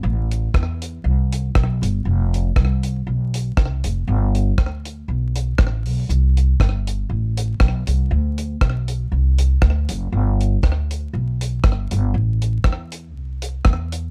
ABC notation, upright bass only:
X:1
M:4/4
L:1/8
Q:"Swing" 1/4=119
K:Gmix
V:1 name="Upright bass" clef=bass
A,,,2 E,,2 C,,2 B,,, G,,, | F,,,2 C,,2 B,,,2 C,, F,,, | G,,,2 D,,2 B,,,2 A,,, B,,, | C,,2 G,,,2 A,,,2 B,,, C,, |
D,,2 B,,,2 C,,2 D,, ^F,,, | G,,,2 D,,2 B,,,2 G,,, G,,, | A,,,2 E,,2 C,,2 E,,2 |]